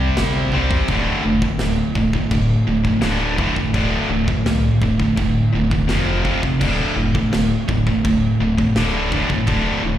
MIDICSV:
0, 0, Header, 1, 4, 480
1, 0, Start_track
1, 0, Key_signature, -1, "minor"
1, 0, Tempo, 715137
1, 601, Time_signature, 4, 2, 24, 8
1, 6700, End_track
2, 0, Start_track
2, 0, Title_t, "Distorted electric guitar"
2, 0, Program_c, 0, 30
2, 0, Note_on_c, 0, 48, 89
2, 0, Note_on_c, 0, 55, 99
2, 0, Note_on_c, 0, 60, 95
2, 346, Note_off_c, 0, 48, 0
2, 349, Note_off_c, 0, 55, 0
2, 353, Note_off_c, 0, 60, 0
2, 362, Note_on_c, 0, 60, 102
2, 371, Note_on_c, 0, 55, 79
2, 381, Note_on_c, 0, 48, 78
2, 586, Note_off_c, 0, 60, 0
2, 591, Note_off_c, 0, 55, 0
2, 596, Note_off_c, 0, 48, 0
2, 609, Note_on_c, 0, 38, 69
2, 614, Note_on_c, 0, 50, 88
2, 615, Note_on_c, 0, 45, 88
2, 829, Note_off_c, 0, 45, 0
2, 830, Note_off_c, 0, 38, 0
2, 832, Note_off_c, 0, 50, 0
2, 837, Note_on_c, 0, 45, 71
2, 840, Note_on_c, 0, 38, 64
2, 958, Note_off_c, 0, 38, 0
2, 958, Note_off_c, 0, 45, 0
2, 966, Note_on_c, 0, 38, 58
2, 966, Note_on_c, 0, 45, 79
2, 1080, Note_off_c, 0, 38, 0
2, 1083, Note_off_c, 0, 45, 0
2, 1088, Note_on_c, 0, 38, 90
2, 1096, Note_on_c, 0, 45, 88
2, 1299, Note_off_c, 0, 38, 0
2, 1303, Note_off_c, 0, 45, 0
2, 1325, Note_on_c, 0, 45, 70
2, 1329, Note_on_c, 0, 38, 64
2, 1435, Note_off_c, 0, 45, 0
2, 1438, Note_off_c, 0, 38, 0
2, 1444, Note_on_c, 0, 45, 89
2, 1446, Note_on_c, 0, 38, 71
2, 1546, Note_off_c, 0, 38, 0
2, 1547, Note_off_c, 0, 45, 0
2, 1554, Note_on_c, 0, 38, 78
2, 1555, Note_on_c, 0, 45, 84
2, 1772, Note_off_c, 0, 38, 0
2, 1772, Note_off_c, 0, 45, 0
2, 1790, Note_on_c, 0, 45, 75
2, 1791, Note_on_c, 0, 38, 56
2, 1895, Note_off_c, 0, 45, 0
2, 1899, Note_off_c, 0, 38, 0
2, 1903, Note_on_c, 0, 45, 89
2, 1907, Note_on_c, 0, 38, 75
2, 2011, Note_off_c, 0, 38, 0
2, 2018, Note_off_c, 0, 45, 0
2, 2020, Note_on_c, 0, 38, 100
2, 2026, Note_on_c, 0, 45, 85
2, 2028, Note_on_c, 0, 50, 95
2, 2250, Note_off_c, 0, 38, 0
2, 2254, Note_off_c, 0, 45, 0
2, 2258, Note_off_c, 0, 50, 0
2, 2258, Note_on_c, 0, 38, 106
2, 2262, Note_on_c, 0, 45, 94
2, 2266, Note_on_c, 0, 50, 87
2, 2373, Note_off_c, 0, 38, 0
2, 2375, Note_off_c, 0, 45, 0
2, 2377, Note_off_c, 0, 50, 0
2, 2391, Note_on_c, 0, 45, 74
2, 2396, Note_on_c, 0, 38, 67
2, 2498, Note_off_c, 0, 38, 0
2, 2501, Note_off_c, 0, 45, 0
2, 2507, Note_on_c, 0, 38, 70
2, 2509, Note_on_c, 0, 45, 84
2, 2510, Note_on_c, 0, 50, 94
2, 2737, Note_off_c, 0, 38, 0
2, 2739, Note_off_c, 0, 45, 0
2, 2739, Note_off_c, 0, 50, 0
2, 2747, Note_on_c, 0, 45, 77
2, 2754, Note_on_c, 0, 38, 62
2, 2848, Note_off_c, 0, 45, 0
2, 2852, Note_off_c, 0, 38, 0
2, 2856, Note_on_c, 0, 45, 70
2, 2860, Note_on_c, 0, 38, 61
2, 2982, Note_off_c, 0, 38, 0
2, 2985, Note_off_c, 0, 45, 0
2, 2990, Note_on_c, 0, 38, 76
2, 2993, Note_on_c, 0, 45, 99
2, 3209, Note_off_c, 0, 38, 0
2, 3211, Note_off_c, 0, 45, 0
2, 3240, Note_on_c, 0, 38, 67
2, 3242, Note_on_c, 0, 45, 80
2, 3343, Note_off_c, 0, 45, 0
2, 3345, Note_off_c, 0, 38, 0
2, 3351, Note_on_c, 0, 45, 86
2, 3353, Note_on_c, 0, 38, 71
2, 3457, Note_off_c, 0, 38, 0
2, 3464, Note_off_c, 0, 45, 0
2, 3465, Note_on_c, 0, 38, 86
2, 3472, Note_on_c, 0, 45, 84
2, 3687, Note_off_c, 0, 38, 0
2, 3690, Note_off_c, 0, 45, 0
2, 3709, Note_on_c, 0, 45, 83
2, 3713, Note_on_c, 0, 38, 66
2, 3828, Note_off_c, 0, 38, 0
2, 3828, Note_off_c, 0, 45, 0
2, 3836, Note_on_c, 0, 38, 80
2, 3836, Note_on_c, 0, 45, 94
2, 3942, Note_off_c, 0, 38, 0
2, 3945, Note_on_c, 0, 41, 95
2, 3948, Note_off_c, 0, 45, 0
2, 3950, Note_on_c, 0, 48, 90
2, 3952, Note_on_c, 0, 53, 105
2, 4176, Note_off_c, 0, 41, 0
2, 4179, Note_off_c, 0, 48, 0
2, 4180, Note_off_c, 0, 53, 0
2, 4185, Note_on_c, 0, 41, 84
2, 4187, Note_on_c, 0, 48, 100
2, 4187, Note_on_c, 0, 53, 111
2, 4296, Note_off_c, 0, 41, 0
2, 4297, Note_off_c, 0, 48, 0
2, 4298, Note_off_c, 0, 53, 0
2, 4316, Note_on_c, 0, 48, 81
2, 4319, Note_on_c, 0, 41, 62
2, 4424, Note_off_c, 0, 41, 0
2, 4426, Note_on_c, 0, 38, 83
2, 4435, Note_on_c, 0, 50, 94
2, 4436, Note_off_c, 0, 48, 0
2, 4439, Note_on_c, 0, 45, 88
2, 4657, Note_off_c, 0, 38, 0
2, 4662, Note_off_c, 0, 50, 0
2, 4664, Note_off_c, 0, 45, 0
2, 4672, Note_on_c, 0, 45, 75
2, 4676, Note_on_c, 0, 38, 65
2, 4792, Note_off_c, 0, 38, 0
2, 4792, Note_off_c, 0, 45, 0
2, 4800, Note_on_c, 0, 38, 65
2, 4800, Note_on_c, 0, 45, 70
2, 4904, Note_off_c, 0, 38, 0
2, 4909, Note_off_c, 0, 45, 0
2, 4913, Note_on_c, 0, 38, 73
2, 4917, Note_on_c, 0, 45, 109
2, 5131, Note_off_c, 0, 38, 0
2, 5133, Note_off_c, 0, 45, 0
2, 5163, Note_on_c, 0, 45, 92
2, 5164, Note_on_c, 0, 38, 77
2, 5275, Note_off_c, 0, 45, 0
2, 5281, Note_off_c, 0, 38, 0
2, 5283, Note_on_c, 0, 45, 93
2, 5288, Note_on_c, 0, 38, 72
2, 5392, Note_off_c, 0, 38, 0
2, 5392, Note_off_c, 0, 45, 0
2, 5400, Note_on_c, 0, 38, 78
2, 5400, Note_on_c, 0, 45, 88
2, 5615, Note_off_c, 0, 38, 0
2, 5615, Note_off_c, 0, 45, 0
2, 5640, Note_on_c, 0, 45, 77
2, 5650, Note_on_c, 0, 38, 71
2, 5747, Note_off_c, 0, 45, 0
2, 5748, Note_off_c, 0, 38, 0
2, 5755, Note_on_c, 0, 45, 96
2, 5756, Note_on_c, 0, 38, 82
2, 5877, Note_off_c, 0, 38, 0
2, 5877, Note_off_c, 0, 45, 0
2, 5885, Note_on_c, 0, 38, 82
2, 5885, Note_on_c, 0, 45, 104
2, 5888, Note_on_c, 0, 50, 95
2, 6108, Note_off_c, 0, 38, 0
2, 6108, Note_off_c, 0, 45, 0
2, 6109, Note_off_c, 0, 50, 0
2, 6119, Note_on_c, 0, 38, 106
2, 6125, Note_on_c, 0, 45, 95
2, 6130, Note_on_c, 0, 50, 98
2, 6225, Note_off_c, 0, 38, 0
2, 6228, Note_off_c, 0, 45, 0
2, 6230, Note_off_c, 0, 50, 0
2, 6247, Note_on_c, 0, 38, 55
2, 6247, Note_on_c, 0, 45, 80
2, 6348, Note_off_c, 0, 38, 0
2, 6352, Note_off_c, 0, 45, 0
2, 6356, Note_on_c, 0, 38, 88
2, 6360, Note_on_c, 0, 45, 88
2, 6364, Note_on_c, 0, 50, 88
2, 6584, Note_off_c, 0, 38, 0
2, 6586, Note_off_c, 0, 45, 0
2, 6588, Note_off_c, 0, 50, 0
2, 6602, Note_on_c, 0, 45, 92
2, 6607, Note_on_c, 0, 38, 69
2, 6700, Note_off_c, 0, 38, 0
2, 6700, Note_off_c, 0, 45, 0
2, 6700, End_track
3, 0, Start_track
3, 0, Title_t, "Analog synth bass"
3, 0, Program_c, 1, 38
3, 0, Note_on_c, 1, 36, 87
3, 73, Note_off_c, 1, 36, 0
3, 128, Note_on_c, 1, 31, 84
3, 319, Note_off_c, 1, 31, 0
3, 365, Note_on_c, 1, 36, 98
3, 557, Note_off_c, 1, 36, 0
3, 597, Note_on_c, 1, 26, 89
3, 754, Note_off_c, 1, 26, 0
3, 837, Note_on_c, 1, 29, 85
3, 994, Note_off_c, 1, 29, 0
3, 1075, Note_on_c, 1, 26, 89
3, 1232, Note_off_c, 1, 26, 0
3, 1314, Note_on_c, 1, 26, 94
3, 1471, Note_off_c, 1, 26, 0
3, 1552, Note_on_c, 1, 26, 90
3, 1710, Note_off_c, 1, 26, 0
3, 1796, Note_on_c, 1, 26, 93
3, 1952, Note_off_c, 1, 26, 0
3, 2032, Note_on_c, 1, 26, 93
3, 2345, Note_off_c, 1, 26, 0
3, 2511, Note_on_c, 1, 26, 96
3, 2669, Note_off_c, 1, 26, 0
3, 2748, Note_on_c, 1, 26, 88
3, 2907, Note_off_c, 1, 26, 0
3, 2994, Note_on_c, 1, 36, 91
3, 3151, Note_off_c, 1, 36, 0
3, 3235, Note_on_c, 1, 26, 97
3, 3391, Note_off_c, 1, 26, 0
3, 3475, Note_on_c, 1, 26, 92
3, 3632, Note_off_c, 1, 26, 0
3, 3714, Note_on_c, 1, 27, 90
3, 3955, Note_on_c, 1, 29, 88
3, 3965, Note_off_c, 1, 27, 0
3, 4268, Note_off_c, 1, 29, 0
3, 4441, Note_on_c, 1, 26, 95
3, 4596, Note_off_c, 1, 26, 0
3, 4674, Note_on_c, 1, 29, 86
3, 4831, Note_off_c, 1, 29, 0
3, 4926, Note_on_c, 1, 26, 85
3, 5080, Note_off_c, 1, 26, 0
3, 5160, Note_on_c, 1, 26, 84
3, 5315, Note_off_c, 1, 26, 0
3, 5408, Note_on_c, 1, 26, 99
3, 5561, Note_off_c, 1, 26, 0
3, 5639, Note_on_c, 1, 26, 101
3, 5795, Note_off_c, 1, 26, 0
3, 5885, Note_on_c, 1, 26, 88
3, 6195, Note_off_c, 1, 26, 0
3, 6365, Note_on_c, 1, 26, 93
3, 6520, Note_off_c, 1, 26, 0
3, 6601, Note_on_c, 1, 26, 92
3, 6700, Note_off_c, 1, 26, 0
3, 6700, End_track
4, 0, Start_track
4, 0, Title_t, "Drums"
4, 113, Note_on_c, 9, 52, 64
4, 114, Note_on_c, 9, 38, 111
4, 180, Note_off_c, 9, 52, 0
4, 181, Note_off_c, 9, 38, 0
4, 348, Note_on_c, 9, 48, 65
4, 415, Note_off_c, 9, 48, 0
4, 474, Note_on_c, 9, 36, 95
4, 541, Note_off_c, 9, 36, 0
4, 590, Note_on_c, 9, 52, 56
4, 595, Note_on_c, 9, 36, 91
4, 657, Note_off_c, 9, 52, 0
4, 662, Note_off_c, 9, 36, 0
4, 953, Note_on_c, 9, 36, 88
4, 1020, Note_off_c, 9, 36, 0
4, 1068, Note_on_c, 9, 38, 124
4, 1068, Note_on_c, 9, 52, 63
4, 1135, Note_off_c, 9, 52, 0
4, 1136, Note_off_c, 9, 38, 0
4, 1312, Note_on_c, 9, 36, 91
4, 1379, Note_off_c, 9, 36, 0
4, 1432, Note_on_c, 9, 36, 74
4, 1499, Note_off_c, 9, 36, 0
4, 1549, Note_on_c, 9, 52, 67
4, 1552, Note_on_c, 9, 36, 102
4, 1616, Note_off_c, 9, 52, 0
4, 1619, Note_off_c, 9, 36, 0
4, 1911, Note_on_c, 9, 36, 84
4, 1978, Note_off_c, 9, 36, 0
4, 2024, Note_on_c, 9, 52, 58
4, 2025, Note_on_c, 9, 38, 114
4, 2091, Note_off_c, 9, 52, 0
4, 2092, Note_off_c, 9, 38, 0
4, 2272, Note_on_c, 9, 36, 94
4, 2339, Note_off_c, 9, 36, 0
4, 2392, Note_on_c, 9, 36, 82
4, 2460, Note_off_c, 9, 36, 0
4, 2512, Note_on_c, 9, 36, 93
4, 2513, Note_on_c, 9, 52, 54
4, 2579, Note_off_c, 9, 36, 0
4, 2580, Note_off_c, 9, 52, 0
4, 2872, Note_on_c, 9, 36, 90
4, 2939, Note_off_c, 9, 36, 0
4, 2993, Note_on_c, 9, 52, 68
4, 2994, Note_on_c, 9, 38, 124
4, 3061, Note_off_c, 9, 38, 0
4, 3061, Note_off_c, 9, 52, 0
4, 3233, Note_on_c, 9, 36, 99
4, 3300, Note_off_c, 9, 36, 0
4, 3353, Note_on_c, 9, 36, 83
4, 3420, Note_off_c, 9, 36, 0
4, 3471, Note_on_c, 9, 52, 62
4, 3473, Note_on_c, 9, 36, 105
4, 3538, Note_off_c, 9, 52, 0
4, 3540, Note_off_c, 9, 36, 0
4, 3835, Note_on_c, 9, 36, 86
4, 3902, Note_off_c, 9, 36, 0
4, 3953, Note_on_c, 9, 38, 113
4, 3953, Note_on_c, 9, 52, 59
4, 4020, Note_off_c, 9, 38, 0
4, 4020, Note_off_c, 9, 52, 0
4, 4195, Note_on_c, 9, 36, 85
4, 4262, Note_off_c, 9, 36, 0
4, 4317, Note_on_c, 9, 36, 86
4, 4384, Note_off_c, 9, 36, 0
4, 4437, Note_on_c, 9, 36, 96
4, 4437, Note_on_c, 9, 49, 85
4, 4437, Note_on_c, 9, 52, 58
4, 4504, Note_off_c, 9, 36, 0
4, 4504, Note_off_c, 9, 49, 0
4, 4504, Note_off_c, 9, 52, 0
4, 4798, Note_on_c, 9, 36, 93
4, 4866, Note_off_c, 9, 36, 0
4, 4918, Note_on_c, 9, 52, 72
4, 4919, Note_on_c, 9, 38, 113
4, 4985, Note_off_c, 9, 52, 0
4, 4986, Note_off_c, 9, 38, 0
4, 5160, Note_on_c, 9, 36, 100
4, 5227, Note_off_c, 9, 36, 0
4, 5281, Note_on_c, 9, 36, 77
4, 5348, Note_off_c, 9, 36, 0
4, 5402, Note_on_c, 9, 36, 120
4, 5402, Note_on_c, 9, 52, 59
4, 5469, Note_off_c, 9, 36, 0
4, 5469, Note_off_c, 9, 52, 0
4, 5762, Note_on_c, 9, 36, 81
4, 5829, Note_off_c, 9, 36, 0
4, 5878, Note_on_c, 9, 52, 64
4, 5879, Note_on_c, 9, 38, 117
4, 5945, Note_off_c, 9, 52, 0
4, 5946, Note_off_c, 9, 38, 0
4, 6122, Note_on_c, 9, 36, 84
4, 6189, Note_off_c, 9, 36, 0
4, 6241, Note_on_c, 9, 36, 74
4, 6308, Note_off_c, 9, 36, 0
4, 6355, Note_on_c, 9, 52, 48
4, 6362, Note_on_c, 9, 36, 98
4, 6423, Note_off_c, 9, 52, 0
4, 6429, Note_off_c, 9, 36, 0
4, 6700, End_track
0, 0, End_of_file